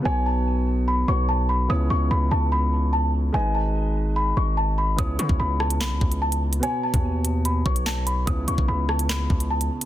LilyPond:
<<
  \new Staff \with { instrumentName = "Celesta" } { \time 4/4 \key cis \minor \tempo 4 = 146 gis''8 a''4. b''8 cis'''8 a''8 b''8 | dis'''8 cis'''8 b''8 a''8 b''4 a''8 r8 | gis''8 a''4. b''8 cis'''8 a''8 b''8 | dis'''8 cis'''8 b''8 a''8 b''4 a''8 r8 |
gis''8 a''4. b''8 cis'''8 a''8 b''8 | dis'''8 cis'''8 b''8 a''8 b''4 a''8 r8 | }
  \new Staff \with { instrumentName = "Grand piano" } { \time 4/4 \key cis \minor <b, b fis' cis''>2~ <b, b fis' cis''>8 <b, b fis' cis''>4. | <cis b e' cis''>1 | <gis dis' b' dis''>1 | <cis b e' cis''>1 |
<b, b fis' cis''>2~ <b, b fis' cis''>8 <b, b fis' cis''>4. | <cis b e' cis''>1 | }
  \new Staff \with { instrumentName = "808-style bass" } { \clef bass \time 4/4 \key cis \minor b,,2~ b,,8 b,,4. | cis,8 cis,8 cis,8 cis,2~ cis,8 | gis,,2~ gis,,8 gis,,4. | cis,8 cis16 cis,16 cis,4 b,,16 cis,16 cis,4. |
r8. dis,4.~ dis,16 b,,4. | cis,8 cis,16 b,,16 cis,4. cis,4 r8 | }
  \new DrumStaff \with { instrumentName = "Drums" } \drummode { \time 4/4 r4 r4 r4 r4 | r4 r4 r4 r4 | r4 r4 r4 r4 | <hh bd>8 hh16 bd16 r8 ss16 hh16 <hc sn>8 bd16 hh16 r16 hh8 hh16 |
hh8. <hh bd>16 r8 hh8 hh8 bd16 hh16 <hc sn>8 hh8 | <hh bd>8 hh16 bd16 r8 ss16 hh16 <hc sn>8 bd16 hh16 r16 hh8 hh16 | }
>>